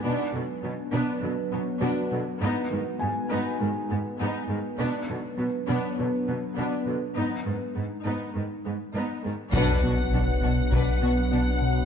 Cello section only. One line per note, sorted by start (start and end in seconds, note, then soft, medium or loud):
0.04 0.12 B2 medium
0.33 0.41 B2 soft
0.63 0.71 B2 soft
0.93 1.01 B2 medium
1.23 1.31 B2 soft
1.53 1.61 B2 soft
1.82 1.90 B2 medium
2.12 2.20 B2 soft
2.42 2.50 G#2 medium
2.72 2.80 G#2 soft
3.01 3.09 G#2 soft
3.31 3.39 G#2 medium
3.61 3.69 G#2 soft
3.91 3.99 G#2 soft
4.20 4.28 G#2 medium
4.49 4.57 G#2 soft
4.79 4.87 B2 medium
5.08 5.16 B2 soft
5.38 5.46 B2 soft
5.68 5.76 B2 medium
5.98 6.06 B2 soft
6.28 6.36 B2 soft
6.58 6.66 B2 medium
6.87 6.95 B2 soft
7.17 7.25 G#2 soft
7.46 7.54 G#2 soft
7.76 7.84 G#2 soft
8.06 8.14 G#2 soft
8.35 8.43 G#2 soft
8.65 8.73 G#2 soft
8.94 9.02 G#2 soft
9.24 9.32 G#2 soft
9.53 9.81 B2 medium
9.84 9.92 B2 soft
10.13 10.21 B2 soft
10.42 10.50 B2 soft
10.72 10.80 B2 soft
11.02 11.10 B2 soft
11.32 11.40 B2 soft